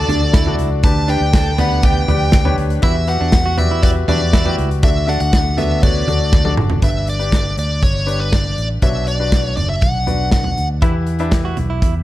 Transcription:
Already playing: D3 D4 F#4 A4 D5 A5
0.08 D2 D4 F#4 A4 D5, closed hi-hat, floor tom
0.33 E4, kick, snare, closed hi-hat
0.46 D4 F#4 A4 D5, floor tom
0.58 C#2, closed hi-hat
0.83 D2 D3 D4 G4 B4 D5 A5, kick, closed hi-hat
1.08 D4 G4 B4 D5 G5, closed hi-hat
1.20 D2
1.33 A4 G5 A5, kick, snare, closed hi-hat
1.58 B3 D4 G4 B4 D5 F#5 B5, closed hi-hat, floor tom
1.83 D4 G4 B4 D5 G5, kick, closed hi-hat
2.08 D2 D4 G4 B4 D5 G5, closed hi-hat, floor tom
2.32 kick, snare, closed hi-hat
2.45 D4 G4 B4 C#5, floor tom
2.58 D2, closed hi-hat
2.70 closed hi-hat
2.82 E2 E3 E4 F#4 G4 B4 E5, kick, closed hi-hat
3.07 F#4 G4 B4 E5 F#5, closed hi-hat
3.21 E2 D4
3.32 kick, snare, closed hi-hat
3.46 F#4
3.57 F#4 G4 B4 D5 E5, closed hi-hat, floor tom
3.71 E4
3.82 F#4 G4 B4 D5 E5, kick, closed hi-hat
4.08 E2 D4 F#4 G4 B4 D5 E5, closed hi-hat, floor tom
4.33 E4, kick, snare, closed hi-hat
4.45 F#4 G4 B4 G5, floor tom
4.58 C#2, closed hi-hat
4.71 closed hi-hat
4.83 D2 D3 D4 F#4 A4 D5 E5, kick, closed hi-hat
5.07 D4 F#4 A4 E5 F#5, closed hi-hat
5.20 D2 F#5, closed hi-hat
5.33 kick, snare, closed hi-hat
5.57 B3 D4 F#4 A4 E5, closed hi-hat, floor tom
5.82 D4 F#4 A4 C#5 D5, kick, closed hi-hat
6.07 D2 D4 F#4 A4 D5, closed hi-hat, floor tom
6.32 kick, snare
6.45 D4 F#4 A4 D5, high tom
6.57 F#1, mid tom
6.70 floor tom
6.82 G1 G2 D4 G4 B4 D5 E5, kick, closed hi-hat
7.07 D5, closed hi-hat
7.19 D4 G4 B4 D5, closed hi-hat
7.32 kick, snare, closed hi-hat
7.57 D2 D5, closed hi-hat
7.83 G1 C#5, kick, closed hi-hat
8.06 D4 G4 B4 D5, closed hi-hat
8.20 B4
8.32 D5, kick, snare, closed hi-hat
8.58 A1, closed hi-hat
8.82 B1 B2 D4 F#4 B4 C#5 E5, kick, closed hi-hat
9.07 D5, closed hi-hat
9.19 D4 F#4 B4 D5
9.32 kick, snare, closed hi-hat
9.57 F#1 D5, closed hi-hat, floor tom
9.69 E5
9.81 B1 F#5, kick, closed hi-hat
10.07 D4 F#4 B4 D5, closed hi-hat, floor tom
10.31 F#5, kick, snare, closed hi-hat
10.44 floor tom
10.57 D2, closed hi-hat
10.82 E2 E3 E4 G4 B4 E5, kick, closed hi-hat
11.07 closed hi-hat
11.19 D4 E4 G4 B4 E5, closed hi-hat
11.31 kick, snare, closed hi-hat
11.45 F#4
11.57 B1, closed hi-hat, floor tom
11.70 E4
11.82 E2, kick, closed hi-hat

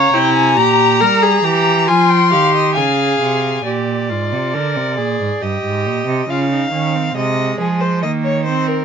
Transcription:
Already playing: C#3 C#5 F5 A#5
0.13 C3 E4 G5
0.35 G#5
0.57 A#2 G4 A#5
0.79 A#5
1.00 G3 A#4
1.22 G#4
1.44 E3 G4
1.87 F3 F4 G#5 C6
2.10 G5
2.31 D#3 G4 F5
2.55 D#5
2.75 C#3 G#4 F5 G#5
3.21 C3
3.65 A#2 G4 D5
4.09 G#2 F4
4.32 C3
4.54 D3 A#4
4.76 C3
4.98 A#2 G#4
5.21 G#2
5.41 G2 G4 D#5
5.64 G#2
5.86 A#2
6.07 C3
6.29 C#3 F4 F5
6.51 D#4
6.72 D#3 C#4
6.94 C4
7.16 C3 G#3 D#5
7.60 F3 G#4
7.81 C5
8.03 D#3 A#3 D#5
8.24 C#5
8.45 C4 C5
8.67 A#4

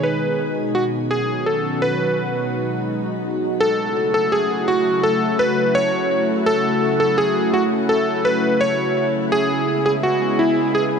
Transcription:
Already playing: B2 D#3 G#3 D#4 G#4
0.03 B4
0.75 F#3 C#4 F#4
1.11 G#4
1.46 A4
1.82 B4
2.19 G#3 D#4
3.61 C#3 F#3 A3 E4 F#4 A4
4.14 A4
4.32 G#4
4.68 F#4
5.03 A4
5.39 B4
5.75 C#5
6.46 A4
7.00 A4
7.18 G#4
7.54 F#4
7.89 A4
8.25 B4
8.61 C#5
9.32 G#3 B3 G#4
9.86 G#4
10.03 F#4
10.39 E4
10.75 G#4

